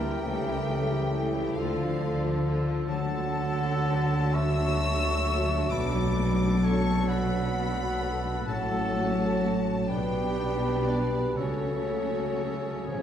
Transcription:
Already playing: double bass section D2, cello section D3, harp D3 D4 E4 G4 A#4 E5 G5, french horn section E3, bassoon E3, clarinet G4, oboe A#4, flute E5, violin section G5
0.00 viola section E3 G3, violin section E4 A#4
0.05 harp A#3
0.24 double bass section C#2, cello section C#3, harp C#3, viola section G3 A3, violin section C#4 A4, french horn section A4
0.46 viola section E3 G3, harp G3, violin section E4 G4
0.68 viola section G3 A3, harp A3, violin section C#4 A4
0.91 viola section E3 G3, violin section E4 G4, harp E4
1.12 viola section G3 A3, violin section C#4 A4, harp A4
1.35 viola section E3 G3, harp E4, violin section E4 G4
1.55 double bass section D2, harp D3, cello section D3, french horn section F3, bassoon F3, clarinet F4, violin section F4 A4 F5, oboe A4, flute D5
1.60 viola section D3 A3
1.79 viola section F3, harp A3, violin section D4 F4
2.01 viola section D3 A3, harp D4, violin section F4 A4
2.22 viola section F3, violin section D4 F4, harp A4
2.44 viola section D3 A3, harp D4, violin section F4 A4
2.66 viola section F3, violin section D4 F4, harp D5
2.88 double bass section D2, harp D3, cello section D3, bassoon F#3, viola section F#3 A3, violin section D4 F#4 A5, clarinet A4, flute F#5
3.12 harp A3
3.35 harp D4
3.61 harp F#4
3.85 french horn section F#3 A4
4.10 harp D5
4.33 clarinet E5, harp F#5, flute C#6, violin section E6
4.58 harp A5
4.81 harp F#5
5.04 harp A4
5.26 french horn section F#3 A4, harp F#4
5.49 harp D4
5.71 double bass section B1, harp B2, cello section B2, oboe A4, clarinet D5, flute B5, violin section D6
5.94 harp F#3
6.17 harp A3
6.39 harp D4
6.61 french horn section F#3 A4, harp F#4, clarinet C#5, flute A5, violin section C#6
6.85 harp A4
7.07 clarinet B4, harp D5, flute F#5, violin section B5
7.30 harp F#5
7.54 harp D5
7.77 harp F#4
7.99 french horn section F#3 A4, harp D4
8.24 harp A3
8.47 double bass section A1, harp A2, cello section A2, french horn section F#3 A4, bassoon F#3, viola section F#3 A3, violin section C#4 F#4 A5, clarinet A4, flute F#5
8.70 harp F#3
8.93 harp A3
9.17 harp C#4
9.41 harp F#4
9.64 harp A4
9.87 double bass section B1, harp B2, cello section B2, bassoon G3, french horn section G3 B4, viola section B3 D4, violin section D4 G4 G5, clarinet G4, oboe B4, flute D5
10.11 harp B3
10.37 harp D4
10.62 harp B3
10.86 clarinet D4, harp G4, flute B4, violin section D5
11.12 harp D5
11.36 double bass section C#2, cello section C#3, harp C#3, bassoon F#3, french horn section F#3 A4, viola section F#3 A3, violin section C#4 F#4 C#5, clarinet C#4, oboe A4, flute A4
11.64 harp A3
11.88 harp C#4
12.13 harp F#4
12.62 harp C#5
12.87 harp C#3, timpani C#3, french horn section F3, bassoon F3, viola section F3 G#3, violin section C#4, oboe G#4
12.95 timpani C#3

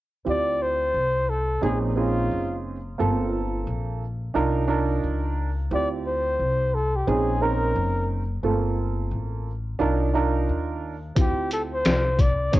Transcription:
0.25 upright bass D2, upright piano C4 E4 F4 G4
0.29 flugelhorn D5
0.62 flugelhorn C5
0.94 upright bass C2
1.29 flugelhorn A4
1.61 upright bass A#1, upright piano C4 C#4 D#4 G#4, flugelhorn G#4
1.95 upright piano C4 C#4 D#4 G#4, flugelhorn F4
2.31 upright bass F#1
2.98 upright bass G1, upright piano A#3 C4 F4 A4
3.67 upright bass A#1
4.34 upright bass C2, upright piano D4 D#4 F4 A#4
4.68 upright piano D4 D#4 F4 A#4
5.03 upright bass C#2
5.71 upright bass D2, upright piano C4 E4 F4 G4, flugelhorn D5
6.07 flugelhorn C5
6.39 upright bass C2
6.74 flugelhorn A4
6.96 flugelhorn G4
7.07 upright bass A#1, upright piano C4 C#4 D#4 G#4, flugelhorn G#4
7.41 upright piano C4 C#4 D#4 A#4, flugelhorn A#4
7.76 upright bass F#1
8.43 upright bass G1, upright piano A3 C4 F4 A4
8.50 upright piano A#3
9.11 upright bass A1
9.79 upright bass C2, upright piano D4 D#4 F4 A#4
10.14 upright piano D4 D#4 F4 A#4
10.49 upright bass D#2
11.15 upright bass D2, upright piano C4 E4 F4 F#4, kick, closed hi-hat
11.20 flugelhorn G4, upright piano G4
11.51 flugelhorn A4, closed hi-hat
11.74 flugelhorn C5
11.85 upright bass C2, snare, closed hi-hat
12.19 flugelhorn D5, kick, closed hi-hat
12.52 upright bass A#1, upright piano C4 C#4 D#4 G#4, flugelhorn C#5, kick, closed hi-hat

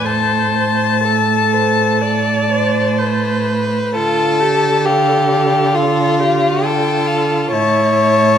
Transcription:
0.04 cello A2, violin A4 A5, viola C5
0.54 violin C5
1.04 violin A4, viola A4
1.53 violin C5
2.01 violin A4, viola D5
2.51 violin C5
2.99 violin B4, viola C5
3.95 cello D3, viola F4, violin A4 A5
4.40 viola G4
4.85 violin G4 F5, viola A4
5.30 violin F5
5.75 violin F4, viola A4
6.20 viola G4
6.62 viola F4, violin A4 G5
7.06 violin F5
7.51 cello A2, viola E4, violin C#5 A5
7.96 violin A5

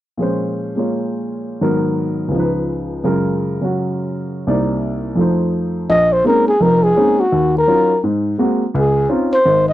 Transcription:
0.17 grand piano A#2 F3 G#3
0.22 grand piano C#4 C5
0.76 grand piano G#3 A#3 F4 C#5
1.61 grand piano G#2 D#3 F#3 B3 A#4
2.28 grand piano C#2 C#3
2.34 grand piano F3 D#4
2.39 grand piano B4
3.04 grand piano F#2 C#3 G#3 F4 A#4
3.61 grand piano C#3 F#3 C#4 F#4
4.47 grand piano C2 C3 A#3 D#4 D5
5.15 grand piano F2 F3 A3 D#4
5.21 grand piano C5
5.89 grand piano A#1, trumpet D#5
6.13 trumpet C5
6.24 grand piano G#3 A#3 C4 C#4 D#4, trumpet A#4
6.48 trumpet G#4
6.60 grand piano F1 F2, trumpet A#4
6.84 trumpet G#4
6.96 grand piano G#3 A#3 C4 C#4 D#4
7.20 trumpet F#4
7.32 grand piano D#2
7.58 trumpet A#4
7.68 grand piano F#3 C#4 D#4 F4
8.04 grand piano G#2
8.38 grand piano G#3 A#3 C4 F#4
8.74 grand piano C#2, trumpet G#4
9.09 grand piano C4 C#4 D#4 F4
9.33 trumpet C5
9.46 grand piano G#1
9.69 trumpet D#5

